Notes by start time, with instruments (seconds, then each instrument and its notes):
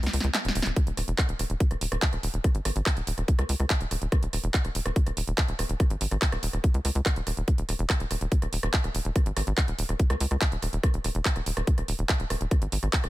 0.03 analog synth bass C#2, snare, open hi-hat
0.13 analog synth bass C#2, open hi-hat
0.20 analog synth bass C#2, snare, closed hi-hat
0.34 snare, clap, closed hi-hat
0.45 analog synth bass D#1, snare, closed hi-hat
0.55 analog synth bass D#1, open hi-hat
0.62 analog synth bass D#1, snare, closed hi-hat
0.76 kick, closed hi-hat
0.87 analog synth bass D#1, closed hi-hat
0.97 analog synth bass D#1, cross-stick, open hi-hat
1.08 analog synth bass E1, closed hi-hat
1.18 kick, cross-stick, clap, closed hi-hat
1.29 analog synth bass D#1, closed hi-hat
1.39 analog synth bass D#1, cross-stick, open hi-hat
1.50 analog synth bass D#1, closed hi-hat
1.60 kick, closed hi-hat
1.71 analog synth bass D#1, cross-stick, closed hi-hat
1.81 analog synth bass D#1, open hi-hat
1.92 analog synth bass D#1, cross-stick, closed hi-hat
2.02 kick, clap, closed hi-hat
2.13 analog synth bass D#1, cross-stick, closed hi-hat
2.23 analog synth bass D#1, open hi-hat
2.34 analog synth bass D#1, closed hi-hat
2.44 kick, cross-stick, closed hi-hat
2.55 analog synth bass G#1, closed hi-hat
2.65 analog synth bass G#1, cross-stick, open hi-hat
2.76 analog synth bass G#1, closed hi-hat
2.86 kick, cross-stick, clap, closed hi-hat
2.97 analog synth bass D#1, closed hi-hat
3.07 analog synth bass D#1, open hi-hat
3.18 analog synth bass D#1, cross-stick, closed hi-hat
3.28 kick, closed hi-hat
3.39 analog synth bass C#2, cross-stick, closed hi-hat
3.49 analog synth bass C#2, open hi-hat
3.60 analog synth bass C#2, cross-stick, closed hi-hat
3.70 kick, clap, closed hi-hat
3.81 analog synth bass D#1, closed hi-hat
3.91 analog synth bass D#1, cross-stick, open hi-hat
4.02 analog synth bass D#1, closed hi-hat
4.12 kick, cross-stick, closed hi-hat
4.23 analog synth bass D#1, closed hi-hat
4.33 analog synth bass D#1, cross-stick, open hi-hat
4.44 analog synth bass E1, closed hi-hat
4.54 kick, clap, closed hi-hat
4.65 analog synth bass D#1, cross-stick, closed hi-hat
4.75 analog synth bass D#1, open hi-hat
4.86 analog synth bass D#1, cross-stick, closed hi-hat
4.96 kick, closed hi-hat
5.07 analog synth bass D#1, cross-stick, closed hi-hat
5.17 analog synth bass D#1, open hi-hat
5.27 analog synth bass D#1, closed hi-hat
5.38 kick, cross-stick, clap, closed hi-hat
5.48 analog synth bass D#1, closed hi-hat
5.59 analog synth bass D#1, cross-stick, open hi-hat
5.69 analog synth bass D#1, closed hi-hat
5.80 kick, cross-stick, closed hi-hat
5.90 analog synth bass G#1, closed hi-hat
6.01 analog synth bass G#1, open hi-hat
6.11 analog synth bass G#1, cross-stick, closed hi-hat
6.22 kick, clap, closed hi-hat
6.32 analog synth bass D#1, cross-stick, closed hi-hat
6.43 analog synth bass D#1, open hi-hat
6.53 analog synth bass D#1, cross-stick, closed hi-hat
6.64 kick, closed hi-hat
6.74 analog synth bass C#2, closed hi-hat
6.85 analog synth bass C#2, cross-stick, open hi-hat
6.95 analog synth bass C#2, closed hi-hat
7.06 kick, cross-stick, clap, closed hi-hat
7.16 analog synth bass D#1, closed hi-hat
7.27 analog synth bass D#1, cross-stick, open hi-hat
7.37 analog synth bass D#1, closed hi-hat
7.48 kick, closed hi-hat
7.58 analog synth bass D#1, closed hi-hat
7.69 analog synth bass D#1, cross-stick, open hi-hat
7.79 analog synth bass E1, closed hi-hat
7.90 kick, cross-stick, clap, closed hi-hat
8.00 analog synth bass D#1, closed hi-hat
8.11 analog synth bass D#1, cross-stick, open hi-hat
8.21 analog synth bass D#1, closed hi-hat
8.32 kick, closed hi-hat
8.42 analog synth bass D#1, cross-stick, closed hi-hat
8.53 analog synth bass D#1, open hi-hat
8.63 analog synth bass D#1, cross-stick, closed hi-hat
8.74 kick, clap, closed hi-hat
8.84 analog synth bass D#1, cross-stick, closed hi-hat
8.95 analog synth bass D#1, open hi-hat
9.05 analog synth bass D#1, closed hi-hat
9.16 kick, cross-stick, closed hi-hat
9.26 analog synth bass G#1, closed hi-hat
9.37 analog synth bass G#1, cross-stick, open hi-hat
9.47 analog synth bass G#1, closed hi-hat
9.58 kick, cross-stick, clap, closed hi-hat
9.68 analog synth bass D#1, closed hi-hat
9.79 analog synth bass D#1, open hi-hat
9.89 analog synth bass D#1, cross-stick, closed hi-hat
9.99 kick, closed hi-hat
10.10 analog synth bass C#2, cross-stick, closed hi-hat
10.20 analog synth bass C#2, open hi-hat
10.31 analog synth bass C#2, cross-stick, closed hi-hat
10.41 kick, clap, closed hi-hat
10.52 analog synth bass D#1, closed hi-hat
10.62 analog synth bass D#1, cross-stick, open hi-hat
10.73 analog synth bass D#1, closed hi-hat
10.83 kick, cross-stick, closed hi-hat
10.94 analog synth bass D#1, closed hi-hat
11.04 analog synth bass D#1, cross-stick, open hi-hat
11.15 analog synth bass E1, closed hi-hat
11.25 kick, clap, closed hi-hat
11.36 analog synth bass D#1, cross-stick, closed hi-hat
11.46 analog synth bass D#1, open hi-hat
11.57 analog synth bass D#1, cross-stick, closed hi-hat
11.67 kick, closed hi-hat
11.78 analog synth bass D#1, cross-stick, closed hi-hat
11.88 analog synth bass D#1, open hi-hat
11.99 analog synth bass D#1, closed hi-hat
12.09 kick, cross-stick, clap, closed hi-hat
12.20 analog synth bass D#1, closed hi-hat
12.30 analog synth bass D#1, cross-stick, open hi-hat
12.41 analog synth bass D#1, closed hi-hat
12.51 kick, cross-stick, closed hi-hat
12.62 analog synth bass G#1, closed hi-hat
12.72 analog synth bass G#1, open hi-hat
12.83 analog synth bass G#1, cross-stick, closed hi-hat
12.93 kick, clap, closed hi-hat
13.04 analog synth bass D#1, cross-stick, closed hi-hat